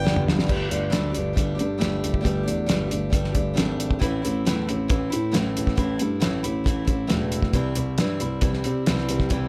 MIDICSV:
0, 0, Header, 1, 5, 480
1, 0, Start_track
1, 0, Tempo, 441176
1, 530, Time_signature, 4, 2, 24, 8
1, 10316, End_track
2, 0, Start_track
2, 0, Title_t, "Harmonica"
2, 0, Program_c, 0, 22
2, 0, Note_on_c, 0, 79, 79
2, 270, Note_off_c, 0, 79, 0
2, 10316, End_track
3, 0, Start_track
3, 0, Title_t, "Steel-string acoustic guitar"
3, 0, Program_c, 1, 25
3, 27, Note_on_c, 1, 43, 74
3, 40, Note_on_c, 1, 50, 79
3, 50, Note_on_c, 1, 55, 80
3, 52, Note_on_c, 1, 59, 77
3, 60, Note_on_c, 1, 67, 83
3, 63, Note_on_c, 1, 62, 85
3, 510, Note_off_c, 1, 55, 0
3, 518, Note_off_c, 1, 43, 0
3, 522, Note_off_c, 1, 62, 0
3, 523, Note_off_c, 1, 59, 0
3, 523, Note_on_c, 1, 55, 86
3, 524, Note_off_c, 1, 50, 0
3, 526, Note_off_c, 1, 67, 0
3, 528, Note_on_c, 1, 57, 77
3, 535, Note_on_c, 1, 62, 75
3, 539, Note_on_c, 1, 67, 83
3, 733, Note_off_c, 1, 67, 0
3, 746, Note_on_c, 1, 67, 65
3, 756, Note_off_c, 1, 62, 0
3, 765, Note_off_c, 1, 57, 0
3, 766, Note_off_c, 1, 55, 0
3, 769, Note_on_c, 1, 62, 58
3, 778, Note_on_c, 1, 57, 48
3, 975, Note_off_c, 1, 57, 0
3, 979, Note_on_c, 1, 55, 91
3, 981, Note_off_c, 1, 62, 0
3, 988, Note_on_c, 1, 57, 84
3, 992, Note_off_c, 1, 67, 0
3, 994, Note_on_c, 1, 62, 90
3, 1005, Note_on_c, 1, 67, 93
3, 1200, Note_off_c, 1, 67, 0
3, 1213, Note_on_c, 1, 67, 59
3, 1220, Note_off_c, 1, 62, 0
3, 1232, Note_off_c, 1, 57, 0
3, 1233, Note_off_c, 1, 55, 0
3, 1233, Note_on_c, 1, 62, 56
3, 1246, Note_on_c, 1, 57, 45
3, 1449, Note_on_c, 1, 55, 69
3, 1450, Note_off_c, 1, 57, 0
3, 1462, Note_off_c, 1, 62, 0
3, 1463, Note_on_c, 1, 57, 63
3, 1465, Note_off_c, 1, 67, 0
3, 1475, Note_on_c, 1, 62, 77
3, 1478, Note_on_c, 1, 67, 71
3, 1672, Note_off_c, 1, 67, 0
3, 1685, Note_on_c, 1, 67, 62
3, 1700, Note_off_c, 1, 62, 0
3, 1703, Note_off_c, 1, 57, 0
3, 1707, Note_off_c, 1, 55, 0
3, 1713, Note_on_c, 1, 62, 57
3, 1716, Note_on_c, 1, 57, 49
3, 1928, Note_off_c, 1, 57, 0
3, 1934, Note_on_c, 1, 55, 78
3, 1941, Note_off_c, 1, 62, 0
3, 1941, Note_on_c, 1, 57, 87
3, 1946, Note_off_c, 1, 67, 0
3, 1954, Note_on_c, 1, 62, 85
3, 1963, Note_on_c, 1, 67, 102
3, 2388, Note_off_c, 1, 55, 0
3, 2401, Note_on_c, 1, 55, 82
3, 2412, Note_off_c, 1, 62, 0
3, 2413, Note_off_c, 1, 57, 0
3, 2417, Note_on_c, 1, 57, 77
3, 2421, Note_off_c, 1, 67, 0
3, 2425, Note_on_c, 1, 62, 76
3, 2434, Note_on_c, 1, 67, 89
3, 2632, Note_off_c, 1, 67, 0
3, 2645, Note_on_c, 1, 67, 63
3, 2659, Note_off_c, 1, 62, 0
3, 2663, Note_off_c, 1, 55, 0
3, 2671, Note_off_c, 1, 57, 0
3, 2672, Note_on_c, 1, 62, 52
3, 2690, Note_on_c, 1, 57, 53
3, 2896, Note_off_c, 1, 57, 0
3, 2898, Note_on_c, 1, 55, 92
3, 2901, Note_off_c, 1, 62, 0
3, 2905, Note_off_c, 1, 67, 0
3, 2909, Note_on_c, 1, 57, 86
3, 2914, Note_on_c, 1, 62, 93
3, 2926, Note_on_c, 1, 67, 90
3, 3113, Note_off_c, 1, 67, 0
3, 3126, Note_on_c, 1, 67, 55
3, 3138, Note_off_c, 1, 62, 0
3, 3151, Note_on_c, 1, 62, 51
3, 3152, Note_off_c, 1, 55, 0
3, 3157, Note_off_c, 1, 57, 0
3, 3173, Note_on_c, 1, 57, 46
3, 3372, Note_on_c, 1, 55, 69
3, 3375, Note_off_c, 1, 57, 0
3, 3379, Note_off_c, 1, 62, 0
3, 3386, Note_off_c, 1, 67, 0
3, 3388, Note_on_c, 1, 57, 71
3, 3392, Note_on_c, 1, 62, 78
3, 3415, Note_on_c, 1, 67, 72
3, 3597, Note_off_c, 1, 67, 0
3, 3610, Note_on_c, 1, 67, 59
3, 3618, Note_off_c, 1, 62, 0
3, 3628, Note_off_c, 1, 55, 0
3, 3631, Note_on_c, 1, 62, 49
3, 3634, Note_off_c, 1, 57, 0
3, 3647, Note_on_c, 1, 57, 48
3, 3845, Note_off_c, 1, 57, 0
3, 3847, Note_on_c, 1, 55, 77
3, 3856, Note_off_c, 1, 62, 0
3, 3858, Note_on_c, 1, 57, 76
3, 3860, Note_off_c, 1, 67, 0
3, 3869, Note_on_c, 1, 62, 90
3, 3873, Note_on_c, 1, 67, 88
3, 4340, Note_on_c, 1, 45, 80
3, 4342, Note_off_c, 1, 55, 0
3, 4344, Note_off_c, 1, 57, 0
3, 4346, Note_on_c, 1, 52, 82
3, 4347, Note_off_c, 1, 62, 0
3, 4348, Note_on_c, 1, 57, 82
3, 4352, Note_on_c, 1, 60, 90
3, 4359, Note_off_c, 1, 67, 0
3, 4363, Note_on_c, 1, 64, 85
3, 4577, Note_off_c, 1, 64, 0
3, 4589, Note_off_c, 1, 60, 0
3, 4590, Note_on_c, 1, 64, 58
3, 4592, Note_off_c, 1, 45, 0
3, 4595, Note_off_c, 1, 52, 0
3, 4597, Note_off_c, 1, 57, 0
3, 4602, Note_on_c, 1, 60, 54
3, 4622, Note_on_c, 1, 57, 48
3, 4837, Note_off_c, 1, 64, 0
3, 4843, Note_off_c, 1, 57, 0
3, 4843, Note_off_c, 1, 60, 0
3, 4844, Note_on_c, 1, 45, 87
3, 4855, Note_on_c, 1, 52, 82
3, 4856, Note_on_c, 1, 57, 87
3, 4864, Note_on_c, 1, 60, 83
3, 4870, Note_on_c, 1, 64, 96
3, 5071, Note_off_c, 1, 64, 0
3, 5083, Note_off_c, 1, 60, 0
3, 5084, Note_off_c, 1, 45, 0
3, 5084, Note_on_c, 1, 64, 60
3, 5090, Note_off_c, 1, 52, 0
3, 5090, Note_off_c, 1, 57, 0
3, 5096, Note_on_c, 1, 60, 52
3, 5118, Note_on_c, 1, 57, 47
3, 5310, Note_off_c, 1, 57, 0
3, 5312, Note_on_c, 1, 52, 76
3, 5323, Note_on_c, 1, 57, 69
3, 5324, Note_off_c, 1, 64, 0
3, 5327, Note_off_c, 1, 60, 0
3, 5339, Note_on_c, 1, 64, 74
3, 5340, Note_on_c, 1, 60, 75
3, 5535, Note_off_c, 1, 64, 0
3, 5548, Note_on_c, 1, 64, 59
3, 5558, Note_off_c, 1, 52, 0
3, 5561, Note_off_c, 1, 60, 0
3, 5564, Note_off_c, 1, 57, 0
3, 5574, Note_on_c, 1, 60, 63
3, 5582, Note_on_c, 1, 57, 44
3, 5782, Note_on_c, 1, 45, 88
3, 5784, Note_off_c, 1, 57, 0
3, 5785, Note_off_c, 1, 60, 0
3, 5789, Note_on_c, 1, 52, 92
3, 5796, Note_off_c, 1, 64, 0
3, 5797, Note_on_c, 1, 57, 89
3, 5798, Note_on_c, 1, 60, 91
3, 5814, Note_on_c, 1, 64, 93
3, 6248, Note_off_c, 1, 45, 0
3, 6261, Note_on_c, 1, 45, 75
3, 6263, Note_off_c, 1, 57, 0
3, 6264, Note_off_c, 1, 52, 0
3, 6268, Note_on_c, 1, 52, 74
3, 6276, Note_on_c, 1, 57, 76
3, 6277, Note_off_c, 1, 60, 0
3, 6279, Note_off_c, 1, 64, 0
3, 6282, Note_on_c, 1, 60, 83
3, 6283, Note_on_c, 1, 64, 82
3, 6492, Note_off_c, 1, 64, 0
3, 6505, Note_on_c, 1, 64, 65
3, 6513, Note_off_c, 1, 45, 0
3, 6516, Note_off_c, 1, 60, 0
3, 6517, Note_off_c, 1, 52, 0
3, 6521, Note_off_c, 1, 57, 0
3, 6530, Note_on_c, 1, 60, 55
3, 6537, Note_on_c, 1, 57, 53
3, 6739, Note_off_c, 1, 57, 0
3, 6744, Note_on_c, 1, 45, 81
3, 6749, Note_on_c, 1, 52, 87
3, 6751, Note_off_c, 1, 60, 0
3, 6752, Note_on_c, 1, 57, 95
3, 6755, Note_off_c, 1, 64, 0
3, 6764, Note_on_c, 1, 60, 92
3, 6767, Note_on_c, 1, 64, 97
3, 6982, Note_off_c, 1, 64, 0
3, 6995, Note_off_c, 1, 45, 0
3, 6995, Note_on_c, 1, 64, 62
3, 6997, Note_off_c, 1, 52, 0
3, 6999, Note_off_c, 1, 57, 0
3, 7005, Note_off_c, 1, 60, 0
3, 7019, Note_on_c, 1, 60, 49
3, 7035, Note_on_c, 1, 57, 47
3, 7224, Note_on_c, 1, 52, 62
3, 7229, Note_off_c, 1, 57, 0
3, 7235, Note_off_c, 1, 60, 0
3, 7241, Note_off_c, 1, 64, 0
3, 7242, Note_on_c, 1, 57, 68
3, 7248, Note_on_c, 1, 60, 64
3, 7259, Note_on_c, 1, 64, 75
3, 7436, Note_off_c, 1, 64, 0
3, 7449, Note_on_c, 1, 64, 61
3, 7457, Note_off_c, 1, 60, 0
3, 7470, Note_on_c, 1, 60, 56
3, 7472, Note_off_c, 1, 57, 0
3, 7475, Note_off_c, 1, 52, 0
3, 7485, Note_on_c, 1, 57, 50
3, 7693, Note_off_c, 1, 57, 0
3, 7695, Note_on_c, 1, 45, 81
3, 7697, Note_on_c, 1, 52, 82
3, 7703, Note_off_c, 1, 60, 0
3, 7706, Note_on_c, 1, 57, 83
3, 7708, Note_off_c, 1, 64, 0
3, 7716, Note_on_c, 1, 60, 91
3, 7725, Note_on_c, 1, 64, 91
3, 8187, Note_off_c, 1, 45, 0
3, 8191, Note_on_c, 1, 48, 77
3, 8192, Note_off_c, 1, 52, 0
3, 8193, Note_off_c, 1, 57, 0
3, 8196, Note_on_c, 1, 52, 71
3, 8197, Note_on_c, 1, 55, 78
3, 8201, Note_off_c, 1, 60, 0
3, 8205, Note_on_c, 1, 60, 84
3, 8209, Note_off_c, 1, 64, 0
3, 8214, Note_on_c, 1, 64, 90
3, 8423, Note_off_c, 1, 64, 0
3, 8436, Note_on_c, 1, 64, 52
3, 8439, Note_off_c, 1, 60, 0
3, 8440, Note_off_c, 1, 48, 0
3, 8442, Note_off_c, 1, 52, 0
3, 8442, Note_off_c, 1, 55, 0
3, 8452, Note_on_c, 1, 60, 56
3, 8467, Note_on_c, 1, 55, 48
3, 8682, Note_off_c, 1, 64, 0
3, 8690, Note_off_c, 1, 60, 0
3, 8692, Note_off_c, 1, 55, 0
3, 8697, Note_on_c, 1, 48, 78
3, 8698, Note_on_c, 1, 52, 75
3, 8702, Note_on_c, 1, 60, 95
3, 8706, Note_on_c, 1, 55, 90
3, 8716, Note_on_c, 1, 64, 99
3, 8920, Note_off_c, 1, 64, 0
3, 8933, Note_off_c, 1, 48, 0
3, 8933, Note_off_c, 1, 52, 0
3, 8933, Note_on_c, 1, 64, 58
3, 8936, Note_off_c, 1, 60, 0
3, 8937, Note_off_c, 1, 55, 0
3, 8956, Note_on_c, 1, 60, 49
3, 8968, Note_on_c, 1, 55, 51
3, 9154, Note_on_c, 1, 52, 65
3, 9156, Note_off_c, 1, 55, 0
3, 9169, Note_on_c, 1, 55, 65
3, 9171, Note_off_c, 1, 64, 0
3, 9172, Note_off_c, 1, 60, 0
3, 9185, Note_on_c, 1, 60, 66
3, 9192, Note_on_c, 1, 64, 80
3, 9394, Note_off_c, 1, 64, 0
3, 9402, Note_off_c, 1, 52, 0
3, 9407, Note_on_c, 1, 64, 54
3, 9410, Note_off_c, 1, 55, 0
3, 9411, Note_off_c, 1, 60, 0
3, 9424, Note_on_c, 1, 60, 48
3, 9444, Note_on_c, 1, 55, 49
3, 9646, Note_on_c, 1, 48, 82
3, 9649, Note_off_c, 1, 64, 0
3, 9650, Note_off_c, 1, 55, 0
3, 9657, Note_off_c, 1, 60, 0
3, 9659, Note_on_c, 1, 52, 84
3, 9663, Note_on_c, 1, 55, 88
3, 9672, Note_on_c, 1, 60, 87
3, 9672, Note_on_c, 1, 64, 88
3, 10093, Note_off_c, 1, 48, 0
3, 10106, Note_off_c, 1, 52, 0
3, 10106, Note_on_c, 1, 48, 83
3, 10110, Note_off_c, 1, 55, 0
3, 10119, Note_on_c, 1, 52, 80
3, 10121, Note_off_c, 1, 60, 0
3, 10123, Note_on_c, 1, 55, 77
3, 10128, Note_off_c, 1, 64, 0
3, 10134, Note_on_c, 1, 60, 82
3, 10141, Note_on_c, 1, 64, 75
3, 10316, Note_off_c, 1, 48, 0
3, 10316, Note_off_c, 1, 52, 0
3, 10316, Note_off_c, 1, 55, 0
3, 10316, Note_off_c, 1, 60, 0
3, 10316, Note_off_c, 1, 64, 0
3, 10316, End_track
4, 0, Start_track
4, 0, Title_t, "Grand piano"
4, 0, Program_c, 2, 0
4, 62, Note_on_c, 2, 31, 80
4, 271, Note_off_c, 2, 31, 0
4, 300, Note_on_c, 2, 31, 83
4, 510, Note_off_c, 2, 31, 0
4, 541, Note_on_c, 2, 31, 86
4, 718, Note_off_c, 2, 31, 0
4, 776, Note_on_c, 2, 31, 83
4, 955, Note_off_c, 2, 31, 0
4, 1022, Note_on_c, 2, 38, 84
4, 1198, Note_off_c, 2, 38, 0
4, 1272, Note_on_c, 2, 31, 81
4, 1444, Note_off_c, 2, 31, 0
4, 1501, Note_on_c, 2, 31, 83
4, 1677, Note_off_c, 2, 31, 0
4, 1749, Note_on_c, 2, 43, 91
4, 1922, Note_off_c, 2, 43, 0
4, 1983, Note_on_c, 2, 31, 80
4, 2159, Note_off_c, 2, 31, 0
4, 2221, Note_on_c, 2, 31, 77
4, 2397, Note_off_c, 2, 31, 0
4, 2449, Note_on_c, 2, 31, 92
4, 2630, Note_off_c, 2, 31, 0
4, 2699, Note_on_c, 2, 40, 86
4, 2876, Note_off_c, 2, 40, 0
4, 2939, Note_on_c, 2, 31, 82
4, 3116, Note_off_c, 2, 31, 0
4, 3181, Note_on_c, 2, 31, 75
4, 3357, Note_off_c, 2, 31, 0
4, 3405, Note_on_c, 2, 31, 81
4, 3587, Note_off_c, 2, 31, 0
4, 3654, Note_on_c, 2, 31, 88
4, 3833, Note_off_c, 2, 31, 0
4, 3904, Note_on_c, 2, 32, 87
4, 4261, Note_off_c, 2, 32, 0
4, 4372, Note_on_c, 2, 33, 90
4, 4552, Note_off_c, 2, 33, 0
4, 4623, Note_on_c, 2, 33, 92
4, 4798, Note_off_c, 2, 33, 0
4, 4867, Note_on_c, 2, 40, 81
4, 5040, Note_off_c, 2, 40, 0
4, 5109, Note_on_c, 2, 33, 84
4, 5282, Note_off_c, 2, 33, 0
4, 5336, Note_on_c, 2, 33, 86
4, 5514, Note_off_c, 2, 33, 0
4, 5584, Note_on_c, 2, 45, 92
4, 5759, Note_off_c, 2, 45, 0
4, 5816, Note_on_c, 2, 33, 86
4, 5994, Note_off_c, 2, 33, 0
4, 6065, Note_on_c, 2, 33, 78
4, 6239, Note_off_c, 2, 33, 0
4, 6291, Note_on_c, 2, 33, 89
4, 6471, Note_off_c, 2, 33, 0
4, 6546, Note_on_c, 2, 43, 89
4, 6720, Note_off_c, 2, 43, 0
4, 6786, Note_on_c, 2, 33, 80
4, 6960, Note_off_c, 2, 33, 0
4, 7017, Note_on_c, 2, 33, 85
4, 7195, Note_off_c, 2, 33, 0
4, 7249, Note_on_c, 2, 33, 86
4, 7430, Note_off_c, 2, 33, 0
4, 7486, Note_on_c, 2, 33, 88
4, 7668, Note_off_c, 2, 33, 0
4, 7725, Note_on_c, 2, 28, 82
4, 8090, Note_off_c, 2, 28, 0
4, 8204, Note_on_c, 2, 36, 89
4, 8387, Note_off_c, 2, 36, 0
4, 8447, Note_on_c, 2, 36, 92
4, 8630, Note_off_c, 2, 36, 0
4, 8683, Note_on_c, 2, 43, 84
4, 8868, Note_off_c, 2, 43, 0
4, 8926, Note_on_c, 2, 36, 72
4, 9109, Note_off_c, 2, 36, 0
4, 9165, Note_on_c, 2, 36, 81
4, 9349, Note_off_c, 2, 36, 0
4, 9416, Note_on_c, 2, 48, 91
4, 9596, Note_off_c, 2, 48, 0
4, 9651, Note_on_c, 2, 36, 87
4, 9833, Note_off_c, 2, 36, 0
4, 9900, Note_on_c, 2, 36, 78
4, 10079, Note_off_c, 2, 36, 0
4, 10132, Note_on_c, 2, 36, 93
4, 10314, Note_off_c, 2, 36, 0
4, 10316, End_track
5, 0, Start_track
5, 0, Title_t, "Drums"
5, 72, Note_on_c, 9, 38, 89
5, 179, Note_on_c, 9, 45, 86
5, 181, Note_off_c, 9, 38, 0
5, 287, Note_off_c, 9, 45, 0
5, 310, Note_on_c, 9, 38, 100
5, 418, Note_off_c, 9, 38, 0
5, 423, Note_on_c, 9, 38, 92
5, 532, Note_off_c, 9, 38, 0
5, 535, Note_on_c, 9, 49, 86
5, 537, Note_on_c, 9, 36, 91
5, 644, Note_off_c, 9, 49, 0
5, 646, Note_off_c, 9, 36, 0
5, 776, Note_on_c, 9, 42, 66
5, 885, Note_off_c, 9, 42, 0
5, 1006, Note_on_c, 9, 42, 85
5, 1014, Note_on_c, 9, 38, 105
5, 1114, Note_off_c, 9, 42, 0
5, 1123, Note_off_c, 9, 38, 0
5, 1245, Note_on_c, 9, 42, 61
5, 1354, Note_off_c, 9, 42, 0
5, 1492, Note_on_c, 9, 36, 101
5, 1495, Note_on_c, 9, 42, 86
5, 1601, Note_off_c, 9, 36, 0
5, 1603, Note_off_c, 9, 42, 0
5, 1732, Note_on_c, 9, 42, 57
5, 1840, Note_off_c, 9, 42, 0
5, 1972, Note_on_c, 9, 42, 77
5, 1980, Note_on_c, 9, 38, 104
5, 2081, Note_off_c, 9, 42, 0
5, 2089, Note_off_c, 9, 38, 0
5, 2217, Note_on_c, 9, 42, 59
5, 2326, Note_off_c, 9, 42, 0
5, 2328, Note_on_c, 9, 36, 75
5, 2437, Note_off_c, 9, 36, 0
5, 2448, Note_on_c, 9, 36, 82
5, 2454, Note_on_c, 9, 42, 72
5, 2557, Note_off_c, 9, 36, 0
5, 2563, Note_off_c, 9, 42, 0
5, 2695, Note_on_c, 9, 42, 60
5, 2804, Note_off_c, 9, 42, 0
5, 2925, Note_on_c, 9, 42, 75
5, 2933, Note_on_c, 9, 38, 115
5, 3033, Note_off_c, 9, 42, 0
5, 3042, Note_off_c, 9, 38, 0
5, 3168, Note_on_c, 9, 42, 66
5, 3277, Note_off_c, 9, 42, 0
5, 3403, Note_on_c, 9, 36, 95
5, 3406, Note_on_c, 9, 42, 85
5, 3511, Note_off_c, 9, 36, 0
5, 3515, Note_off_c, 9, 42, 0
5, 3529, Note_on_c, 9, 38, 30
5, 3637, Note_off_c, 9, 38, 0
5, 3641, Note_on_c, 9, 42, 61
5, 3645, Note_on_c, 9, 36, 71
5, 3750, Note_off_c, 9, 42, 0
5, 3754, Note_off_c, 9, 36, 0
5, 3886, Note_on_c, 9, 42, 77
5, 3895, Note_on_c, 9, 38, 95
5, 3995, Note_off_c, 9, 42, 0
5, 4004, Note_off_c, 9, 38, 0
5, 4133, Note_on_c, 9, 42, 66
5, 4242, Note_off_c, 9, 42, 0
5, 4250, Note_on_c, 9, 36, 73
5, 4359, Note_off_c, 9, 36, 0
5, 4370, Note_on_c, 9, 36, 79
5, 4370, Note_on_c, 9, 42, 78
5, 4479, Note_off_c, 9, 36, 0
5, 4479, Note_off_c, 9, 42, 0
5, 4620, Note_on_c, 9, 42, 62
5, 4729, Note_off_c, 9, 42, 0
5, 4859, Note_on_c, 9, 42, 90
5, 4867, Note_on_c, 9, 38, 101
5, 4967, Note_off_c, 9, 42, 0
5, 4976, Note_off_c, 9, 38, 0
5, 5099, Note_on_c, 9, 42, 71
5, 5208, Note_off_c, 9, 42, 0
5, 5326, Note_on_c, 9, 42, 80
5, 5332, Note_on_c, 9, 36, 106
5, 5435, Note_off_c, 9, 42, 0
5, 5441, Note_off_c, 9, 36, 0
5, 5573, Note_on_c, 9, 42, 64
5, 5682, Note_off_c, 9, 42, 0
5, 5811, Note_on_c, 9, 42, 87
5, 5819, Note_on_c, 9, 38, 100
5, 5919, Note_off_c, 9, 42, 0
5, 5928, Note_off_c, 9, 38, 0
5, 6057, Note_on_c, 9, 42, 62
5, 6166, Note_off_c, 9, 42, 0
5, 6170, Note_on_c, 9, 36, 70
5, 6181, Note_on_c, 9, 38, 28
5, 6279, Note_off_c, 9, 36, 0
5, 6284, Note_on_c, 9, 42, 70
5, 6288, Note_on_c, 9, 36, 90
5, 6289, Note_off_c, 9, 38, 0
5, 6392, Note_off_c, 9, 42, 0
5, 6396, Note_off_c, 9, 36, 0
5, 6521, Note_on_c, 9, 42, 61
5, 6630, Note_off_c, 9, 42, 0
5, 6763, Note_on_c, 9, 42, 82
5, 6772, Note_on_c, 9, 38, 95
5, 6872, Note_off_c, 9, 42, 0
5, 6881, Note_off_c, 9, 38, 0
5, 7007, Note_on_c, 9, 42, 63
5, 7115, Note_off_c, 9, 42, 0
5, 7246, Note_on_c, 9, 36, 94
5, 7257, Note_on_c, 9, 42, 80
5, 7355, Note_off_c, 9, 36, 0
5, 7366, Note_off_c, 9, 42, 0
5, 7480, Note_on_c, 9, 42, 60
5, 7482, Note_on_c, 9, 36, 72
5, 7589, Note_off_c, 9, 42, 0
5, 7591, Note_off_c, 9, 36, 0
5, 7720, Note_on_c, 9, 42, 74
5, 7729, Note_on_c, 9, 38, 101
5, 7829, Note_off_c, 9, 42, 0
5, 7838, Note_off_c, 9, 38, 0
5, 7961, Note_on_c, 9, 42, 67
5, 8070, Note_off_c, 9, 42, 0
5, 8078, Note_on_c, 9, 36, 70
5, 8087, Note_on_c, 9, 38, 28
5, 8187, Note_off_c, 9, 36, 0
5, 8196, Note_off_c, 9, 38, 0
5, 8198, Note_on_c, 9, 36, 81
5, 8198, Note_on_c, 9, 42, 74
5, 8306, Note_off_c, 9, 42, 0
5, 8307, Note_off_c, 9, 36, 0
5, 8436, Note_on_c, 9, 42, 64
5, 8545, Note_off_c, 9, 42, 0
5, 8679, Note_on_c, 9, 42, 88
5, 8687, Note_on_c, 9, 38, 106
5, 8787, Note_off_c, 9, 42, 0
5, 8796, Note_off_c, 9, 38, 0
5, 8922, Note_on_c, 9, 42, 65
5, 9031, Note_off_c, 9, 42, 0
5, 9153, Note_on_c, 9, 42, 81
5, 9162, Note_on_c, 9, 36, 98
5, 9261, Note_off_c, 9, 42, 0
5, 9270, Note_off_c, 9, 36, 0
5, 9286, Note_on_c, 9, 38, 31
5, 9395, Note_off_c, 9, 38, 0
5, 9400, Note_on_c, 9, 42, 72
5, 9509, Note_off_c, 9, 42, 0
5, 9644, Note_on_c, 9, 42, 75
5, 9653, Note_on_c, 9, 38, 105
5, 9753, Note_off_c, 9, 42, 0
5, 9761, Note_off_c, 9, 38, 0
5, 9771, Note_on_c, 9, 38, 33
5, 9880, Note_off_c, 9, 38, 0
5, 9886, Note_on_c, 9, 42, 63
5, 9995, Note_off_c, 9, 42, 0
5, 10006, Note_on_c, 9, 38, 31
5, 10007, Note_on_c, 9, 36, 70
5, 10115, Note_off_c, 9, 36, 0
5, 10115, Note_off_c, 9, 38, 0
5, 10119, Note_on_c, 9, 42, 80
5, 10128, Note_on_c, 9, 36, 85
5, 10228, Note_off_c, 9, 42, 0
5, 10236, Note_off_c, 9, 36, 0
5, 10316, End_track
0, 0, End_of_file